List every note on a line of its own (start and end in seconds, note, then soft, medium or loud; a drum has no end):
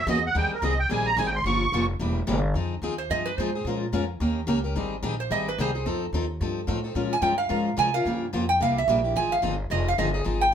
0.07 0.34 E2 loud
0.07 0.18 C#3 medium
0.07 0.18 E3 loud
0.07 0.18 A#3 medium
0.07 0.19 C#4 loud
0.07 0.19 F#4 loud
0.07 0.24 D#5 medium
0.26 0.36 F#5 medium
0.35 0.50 D#2 medium
0.35 0.54 D#3 medium
0.35 0.54 G3 medium
0.35 0.54 C4 medium
0.35 0.54 D#4 medium
0.35 0.54 G#4 medium
0.35 0.52 G5 loud
0.50 0.64 A#4 medium
0.50 muted upright bass stroke soft
0.62 0.89 C2 medium
0.62 0.73 D#3 medium
0.62 0.73 G3 medium
0.62 0.73 C4 loud
0.62 0.73 D#4 loud
0.62 0.74 G#4 loud
0.62 0.78 D#5 medium
0.79 0.90 G5 loud
0.89 1.16 A#1 medium
0.89 1.09 D#3 medium
0.89 1.09 G3 medium
0.89 1.09 C4 medium
0.89 1.09 D#4 medium
0.89 1.09 G#4 medium
0.89 1.06 G#5 medium
1.06 1.17 A#5 loud
1.17 1.44 G#1 loud
1.17 1.28 D#3 medium
1.17 1.28 G3 medium
1.17 1.28 C4 loud
1.17 1.28 D#4 loud
1.17 1.29 G#4 loud
1.17 1.27 G#5 loud
1.26 1.35 G5 medium
1.35 1.45 C6 loud
1.44 1.71 G1 medium
1.44 1.64 C#3 medium
1.44 1.64 F3 medium
1.44 1.64 A#3 medium
1.44 1.65 F4 medium
1.44 1.64 G4 medium
1.44 1.86 C#6 medium
1.72 1.99 F1 medium
1.72 1.83 C#3 medium
1.72 1.84 F3 medium
1.72 1.84 A#3 loud
1.72 1.84 F4 medium
1.72 1.84 G4 loud
1.99 2.26 E1 medium
1.99 2.19 C3 medium
1.99 2.19 G3 medium
1.99 2.19 A#3 medium
1.99 2.19 E4 medium
1.99 2.19 G4 medium
2.27 2.53 G1 loud
2.27 2.38 C3 medium
2.27 2.38 G3 medium
2.27 2.38 A#3 loud
2.27 2.39 E4 medium
2.27 2.38 G4 loud
2.54 2.81 F2 medium
2.54 2.74 F3 medium
2.54 2.74 C4 medium
2.54 2.74 D#4 medium
2.54 2.74 G#4 medium
2.82 3.09 D#2 medium
2.82 2.93 F3 medium
2.82 2.93 C4 medium
2.82 2.94 D#4 medium
2.82 2.94 G#4 medium
2.98 3.10 C5 medium
3.10 3.37 G2 medium
3.10 3.29 F3 medium
3.10 3.29 C4 medium
3.10 3.30 D#4 medium
3.10 3.30 G#4 medium
3.10 3.26 D#5 loud
3.26 3.38 B4 medium
3.38 3.64 G#2 loud
3.38 3.49 F3 medium
3.38 3.49 C4 medium
3.38 3.49 D#4 loud
3.38 3.49 G#4 medium
3.38 3.81 C5 medium
3.55 3.66 C4 soft
3.55 3.66 D#4 medium
3.55 3.66 G#4 medium
3.65 3.92 A#2 medium
3.65 3.85 F3 medium
3.65 3.85 G#3 medium
3.65 3.85 C#4 medium
3.65 3.85 F4 medium
3.65 3.85 A#4 medium
3.92 4.19 F2 medium
3.92 4.03 F3 medium
3.92 4.03 G#3 medium
3.92 4.04 C#4 loud
3.92 4.04 F4 medium
3.92 4.04 A#4 loud
4.20 4.46 D#2 medium
4.20 4.39 D#3 medium
4.20 4.39 A#3 medium
4.20 4.40 C#4 medium
4.20 4.40 G4 medium
4.20 4.40 A#4 medium
4.47 4.74 C#2 loud
4.47 4.58 D#3 medium
4.47 4.58 A#3 medium
4.47 4.58 C#4 medium
4.47 4.58 G4 loud
4.47 4.59 A#4 loud
4.64 4.76 C#4 medium
4.64 4.75 G4 medium
4.64 4.75 A#4 medium
4.75 5.02 G#1 medium
4.75 4.94 D#3 medium
4.75 4.94 G3 medium
4.75 4.94 C4 medium
4.75 4.95 D#4 medium
4.75 4.95 G#4 medium
5.03 5.29 A#1 medium
5.03 5.13 D#3 medium
5.03 5.13 G3 medium
5.03 5.13 C4 medium
5.03 5.14 D#4 loud
5.03 5.14 G#4 loud
5.20 5.31 C5 medium
5.30 5.57 G#1 medium
5.30 5.49 D#3 medium
5.30 5.49 G3 medium
5.30 5.50 C4 medium
5.30 5.50 D#4 medium
5.30 5.50 G#4 medium
5.30 5.47 D#5 loud
5.49 5.59 B4 medium
5.58 5.85 C2 loud
5.58 5.69 D#3 medium
5.58 5.69 G3 medium
5.58 5.69 C4 medium
5.58 5.70 D#4 medium
5.58 5.70 G#4 loud
5.58 6.00 C5 medium
5.75 5.85 C4 soft
5.75 5.85 D#4 medium
5.75 5.85 G#4 medium
5.86 6.12 F2 medium
5.86 6.04 F3 medium
5.86 6.04 C4 medium
5.86 6.05 D#4 medium
5.86 6.05 A4 medium
6.13 6.39 D#2 medium
6.13 6.24 F3 medium
6.13 6.24 C4 medium
6.13 6.24 D#4 medium
6.13 6.24 A4 loud
6.41 6.67 G2 medium
6.41 6.59 F3 medium
6.41 6.60 C4 medium
6.41 6.60 D#4 medium
6.41 6.60 A4 medium
6.67 6.95 A2 medium
6.67 6.78 F3 medium
6.67 6.78 C4 medium
6.67 6.79 D#4 loud
6.67 6.79 A4 medium
6.84 6.96 C4 soft
6.84 6.95 D#4 medium
6.84 6.95 A4 medium
6.95 7.21 A#2 medium
6.95 7.14 F3 medium
6.95 7.14 G#3 medium
6.95 7.15 C#4 medium
6.95 7.15 F4 medium
6.95 7.15 A#4 medium
7.13 7.22 G#5 loud
7.22 7.49 G2 medium
7.22 7.33 F3 medium
7.22 7.33 G#3 medium
7.22 7.33 C#4 medium
7.22 7.33 F4 medium
7.22 7.33 A#4 medium
7.22 7.37 G5 medium
7.38 7.75 F5 medium
7.49 7.77 G#2 medium
7.49 7.69 F3 medium
7.49 7.69 G#3 medium
7.49 7.69 C#4 medium
7.49 7.69 F4 medium
7.49 7.69 A#4 medium
7.77 8.04 C3 loud
7.77 7.88 F3 medium
7.77 7.88 G#3 medium
7.77 7.88 C#4 medium
7.77 7.88 F4 loud
7.77 7.89 A#4 loud
7.77 7.94 G#5 loud
7.94 8.06 C#4 soft
7.94 8.06 F4 medium
7.94 8.05 A#4 medium
7.94 8.20 F5 loud
8.05 8.32 G2 medium
8.05 8.25 C#3 medium
8.05 8.25 F3 medium
8.05 8.25 A#3 medium
8.05 8.25 F4 medium
8.05 8.25 G4 medium
8.33 8.60 F2 medium
8.33 8.44 C#3 medium
8.33 8.43 F3 medium
8.33 8.44 A#3 loud
8.33 8.44 F4 medium
8.33 8.44 G4 loud
8.49 8.60 G5 loud
8.60 8.87 C2 medium
8.60 8.79 C3 medium
8.60 8.80 G3 medium
8.60 8.80 A#3 medium
8.60 8.80 E4 medium
8.60 8.80 G4 medium
8.60 8.77 F5 loud
8.78 9.14 E5 loud
8.88 9.15 A#1 loud
8.88 8.99 C3 medium
8.88 8.99 G3 loud
8.88 8.99 A#3 medium
8.88 9.00 E4 loud
8.88 9.00 G4 loud
9.04 9.15 A#3 soft
9.04 9.16 E4 medium
9.04 9.15 G4 medium
9.16 9.43 G#1 medium
9.16 9.34 F3 medium
9.16 9.35 C4 medium
9.16 9.35 D#4 medium
9.16 9.35 G#4 medium
9.16 9.32 G#5 loud
9.32 9.58 F5 medium
9.42 9.69 G1 medium
9.42 9.53 F3 medium
9.42 9.54 C4 loud
9.42 9.54 D#4 medium
9.42 9.54 G#4 loud
9.70 9.97 F1 medium
9.70 9.89 F3 medium
9.70 9.89 C4 medium
9.70 9.90 D#4 medium
9.70 9.90 G#4 medium
9.70 9.87 D#5 medium
9.88 9.98 F5 loud
9.98 10.25 G1 loud
9.98 10.09 F3 loud
9.98 10.09 C4 medium
9.98 10.09 D#4 loud
9.98 10.09 G#4 loud
9.98 10.42 D#5 medium
10.14 10.23 C4 soft
10.14 10.24 D#4 medium
10.14 10.24 G#4 medium
10.24 10.52 G#1 medium
10.24 10.44 F3 medium
10.24 10.44 C4 medium
10.24 10.44 D#4 medium
10.24 10.45 G#4 medium
10.41 10.53 G5 loud